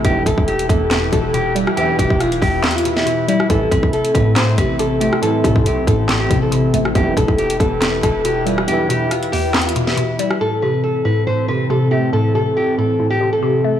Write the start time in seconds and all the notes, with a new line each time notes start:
Already playing: E4
0.04 E1 B1 E2 G2 E3 G4 B4, kick, closed hi-hat
0.26 E1 B2 A4, kick, closed hi-hat
0.38 E1, kick
0.48 G4, closed hi-hat
0.59 closed hi-hat
0.69 E1 E2 A4, kick, closed hi-hat
0.91 E2 B4, snare, clap, closed hi-hat
1.12 E1 B2 A4, kick, closed hi-hat
1.34 B2 G4, closed hi-hat
1.55 G3 F4, closed hi-hat
1.67 cross-stick
1.77 B1 E2 G2 E3 G4, closed hi-hat
1.99 E1 B2 G4, kick, closed hi-hat
2.10 E1, kick
2.20 F4, cross-stick, closed hi-hat
2.32 closed hi-hat
2.41 E1 E2 G4, kick, open hi-hat
2.63 E2, snare, clap, closed hi-hat
2.71 closed hi-hat
2.76 F4, closed hi-hat
2.85 B2, closed hi-hat
2.97 E4, snare
3.06 B2, closed hi-hat
3.28 G3 E4, closed hi-hat
3.40 cross-stick
3.50 A1 C2 A2 E3 A3 C4 A4, kick, closed hi-hat
3.71 A1 C3 B4, kick, closed hi-hat
3.83 kick
3.93 A4, closed hi-hat
4.05 closed hi-hat
4.14 A2 B4, kick, closed hi-hat
4.36 A2 C5, snare, clap, closed hi-hat
4.58 A1 C3 B4, kick, closed hi-hat
4.79 C3 A4, closed hi-hat
5.00 A3 G4, closed hi-hat
5.13 cross-stick
5.22 C2 A2 E3 A4, closed hi-hat
5.44 A2 C3 A4, kick, closed hi-hat
5.56 kick
5.66 B1 G4, closed hi-hat
5.87 A1 A2 A4, kick, closed hi-hat
6.09 A2, snare, clap, closed hi-hat
6.20 G4
6.30 A1 C3, kick, closed hi-hat
6.42 A4
6.52 C3, closed hi-hat
6.74 A1 A3, closed hi-hat
6.85 cross-stick
6.95 E1 B1 E2 G2 E3 E4 G4 B4, kick, closed hi-hat
7.17 E1 B2 A4, kick, closed hi-hat
7.28 E1, kick
7.38 G4, closed hi-hat
7.50 closed hi-hat
7.60 E1 E2 A4, kick, closed hi-hat
7.82 E2 B4, snare, clap, closed hi-hat
8.03 E1 B2 A4, kick, closed hi-hat
8.25 B2 G4, closed hi-hat
8.46 G3 F4, closed hi-hat
8.58 cross-stick
8.67 B1 E2 G2 E3 G4, closed hi-hat
8.89 B2 G4, closed hi-hat
9.11 F4, cross-stick, closed hi-hat
9.23 closed hi-hat
9.32 E2 G4, open hi-hat
9.54 E2, snare, clap, closed hi-hat
9.61 closed hi-hat
9.66 F4, closed hi-hat
9.76 B2, closed hi-hat
9.87 E4, snare
9.97 B2, closed hi-hat
10.19 G3 E4, closed hi-hat
10.31 cross-stick
10.41 A2 E3 C4 A4
10.62 C3 B4
10.84 A4
11.05 A2 B4
11.27 A2 C5
11.48 C3 B4
11.70 C3 A4
11.91 A3 G4
12.13 A2 A4
12.35 C3 A4
12.57 G4
12.78 A2 A4
13.00 A2
13.10 G4
13.21 C3
13.33 A4
13.42 C3
13.64 A3